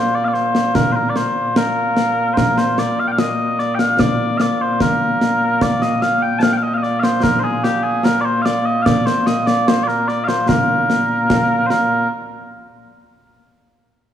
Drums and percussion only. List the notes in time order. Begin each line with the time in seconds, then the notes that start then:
0.34 snare
0.55 snare
0.75 concert bass drum, snare
1.16 snare
1.56 snare
1.97 snare
2.37 concert bass drum, snare
2.58 snare
2.78 snare
3.18 snare
3.59 snare
3.79 snare
3.99 concert bass drum, snare
4.40 snare
4.80 concert bass drum, snare
5.21 snare
5.61 concert bass drum, snare
5.82 snare
6.02 snare
6.43 snare
6.83 snare
7.03 snare
7.24 concert bass drum, snare
7.64 snare
8.05 snare
8.46 snare
8.86 concert bass drum, snare
9.07 snare
9.27 snare
9.47 snare
9.68 snare
9.88 snare
10.09 snare
10.29 snare
10.49 concert bass drum, snare
10.90 snare
11.30 concert bass drum, snare
11.70 snare